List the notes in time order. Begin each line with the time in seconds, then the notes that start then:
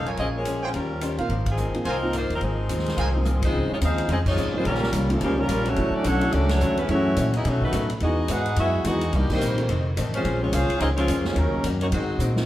Already playing: B1
0.06 F4 A#4 C#5 G#5, ride
0.17 A#1 A#2 F3 G#3 C4 C#4 F4 G#4 D#5, ride
0.36 A#3 F4 G#4 C#5
0.44 A#2 F3 G#3 C#4, hi-hat pedal, ride
0.62 G#3 C#4 F4 C5 C#5 G5
0.73 D#2 D#3 G3 C#4 F4 G4 A#4 C5, ride
1.01 D#3 C#4 G4 C5, hi-hat pedal, ride
1.18 A#1 A#3 C4 D#4 F4 A#4 C5 F5, ride
1.29 G#1 G#2 F3 A#3 C4, ride
1.46 F3 C4 D#4 G#4, kick, ride
1.57 G#2 F3 A#3 C4, hi-hat pedal
1.74 A#3 C4 D#4 F4, muted upright bass stroke, ride
1.85 C2 G#2 F3 A#3 C4 D#4 F4 A#4 C5 G#5, ride
2.02 A#3 C4 D#4 F4
2.13 G#2 F3 A#3 C4 D#4 F4 C5, hi-hat pedal, ride
2.30 D#2 C4, ride
2.34 F3 D#4 A#4
2.41 G#1 G#2 D#3 F3 G#3 A#3 C4 D#4 G#4, ride
2.69 D#2 G#2 F3 A#3 C4 D#4 F4, hi-hat pedal, ride
2.79 snare
2.86 snare, ride
2.96 C2 G#2 F3 A#3 C4 F4 A#4 C5 G#5, ride
3.14 A#3 C4 D#4 F4
3.25 G#2 F3 A#3 C4, hi-hat pedal, mid tom
3.42 F3 G#3 C4 D#4 F4 C5, kick, ride
3.52 C#2 C#3 F3 C4 D#4
3.69 F3 G#3 C#4 D#4 F4 C#5, muted upright bass stroke
3.80 D#2 C#3 F3 G#3 C4 D#4 F4 G#4 C5 F5, hi-hat pedal, ride
3.98 ride
4.08 F2 C#3 F3 G#3 C4 D#4 F4 G#4 D#5, ride
4.26 F3 G#3 C#4 D#4 F4 C#5, kick, crash
4.36 C#2 C#3 F3 C4 D#4, hi-hat pedal
4.53 F3 G3 G#3 A#3 C4 C#4 D#4 F4 C5, muted upright bass stroke
4.64 A#1 C#3 D#3 G3 A#3 C#4 F4 A#4, ride
4.74 snare
4.83 snare
4.92 C2 D#3 G3 C#4 F4, hi-hat pedal, ride
5.10 F3 G3 A3 A#3 C#4 D#4 F4 A4, ride
5.21 C#2 A#2 C#3 D#3 F3 G3 A#3 C#4 G4, ride
5.25 F4
5.37 C#3 G3 A#3 C#4 D#4 F4 A#4
5.48 A#1 D#3 G3 C#4 F4, hi-hat pedal, ride
5.65 F#3 A3 C#4 D4 F#4 C#5, ride
5.76 A1 D3 F#3 A3 C#4 D4 E4, ride
5.94 F#3 A3 C#4 D4 F#4 D5, muted upright bass stroke
6.04 B1 D3 F#3 A3 C#4 D4 F#4 A4 C#5 F#5, hi-hat pedal, ride
6.21 F#3 A3 C#4 D4 E4, ride
6.32 C#2 D3 F#3 A3 C#4 D4 F#4 D5, ride
6.49 F#3 A3 C#4 D4 F#4 C#5, snare, ride
6.60 E2 D3 F#3 A3 C#4, hi-hat pedal
6.77 G#3 B3 C#4 E4 B4, ride
6.88 F#2 E3 F#3 A3 C#4 E4 F#4 G#4 C#5, ride
7.16 F#2 A#2 E3 A3 C#4, hi-hat pedal, ride
7.33 B3 D#4 E4 G#4 D#5, ride
7.44 B2 F#3 A3 C#4 D#4 F#4 C#5, ride
7.61 D#3 F#3 A3 B3 D#4 F#4 B4, kick
7.72 A2 B2 D#3 F#3 A3 B3 C#4 D#4 F#4, hi-hat pedal, ride
7.90 ride
8.00 E2 E3 G#3 B3 D#4 F#4 G#4 D#5, ride
8.28 G#2 E3 G#3 B3 D#4 F#4 G#4 B4 F#5, hi-hat pedal, ride
8.45 ride
8.56 F#2 E3 G#3 B3 D#4 E4 F#4 G#4 E5, ride
8.84 E2 E3 G#3 B3 D#4 F#4 G#4 D#5, hi-hat pedal, ride
9.01 ride
9.12 C2 C3 G3 A#3 D4 D#4 G4 D5, ride
9.16 D#4
9.29 D#3 G3 A#3 C4 D4 D#4 G4 C5, muted upright bass stroke, kick, crash
9.41 A#1 C3 G3 A#3 D#4, hi-hat pedal
9.57 F3 A3 C4 D#4 F4, ride
9.69 F1 F2 D#3 A3 C4, ride
9.97 A1 F2 D#3 A3 C4, hi-hat pedal, ride
10.13 F3 G#3 C4 C#4 F4 C5, ride
10.24 A#1 A#3 C#4 G#4 C5, ride
10.40 F3 G#3 C4 C#4 F4 C#5
10.51 C2 G#3 A#3 C#4 F4 G#4 C5 F5, hi-hat pedal, ride
10.56 C5
10.70 muted upright bass stroke, ride
10.79 C#2 A#3 C4 C#4 D#4 F4 G#4 D#5, ride
10.84 C5
10.96 F3 G#3 C4 C#4 F4 C#5, ride
11.08 F2 A#3 C#4 G#4 C5, hi-hat pedal, ride
11.24 F3 F#3 G#3 A#3 C4 C#4 D#4 F4 C5, snare
11.34 D#2 C#3 D#3 F#3 A#3 C#4 D#4 A#4, ride
11.38 C#4 F#4
11.52 muted upright bass stroke
11.63 F#2 D#3 A#3 C#4 F#4, hi-hat pedal, ride
11.80 F#3 A#3 C#4 D#4 F#4 C#5, ride
11.91 G#2 D#3 F#3 G#3 C4 D#4 F#4 C5, ride
11.95 D#4
12.18 G#2 A#2 F#3 C4 D#4, hi-hat pedal
12.36 G#3 A#3 C4 D#4 F4, snare